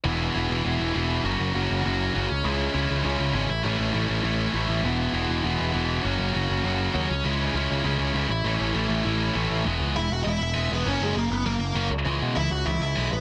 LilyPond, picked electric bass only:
\new Staff \with { instrumentName = "Picked electric bass" } { \clef bass \time 4/4 \key e \major \tempo 4 = 200 e,,4 e,,8 e,,8 e,,8 e,,8 e,,4 | fis,,8 fis,,8 fis,,8 fis,,8 fis,,4 fis,,8 cis,8 | cis,4 cis,8 cis,8 cis,8 cis,8 gis,,8 a,,8 | a,,8 a,,8 a,,8 a,,8 a,,4 a,,8 a,,8 |
e,,4 e,,8 e,,8 e,,8 e,,8 e,,4 | fis,,8 fis,,8 fis,,8 fis,,8 fis,,4 dis,8 cis,8 | cis,4 cis,8 cis,8 cis,8 cis,8 cis,8 a,,8 | a,,8 a,,8 a,,8 a,,8 a,,4 a,,8 a,,8 |
e,,8 cis,8 e,,8 e,,8 e,,8 e,,8 e,,8 e,,8 | fis,,8 fis,,8 fis,,8 fis,,8 fis,,8 fis,,8 fis,,8 cis,8 | cis,8 b,8 cis,8 cis,8 cis,8 cis,8 b,,8 a,,8 | }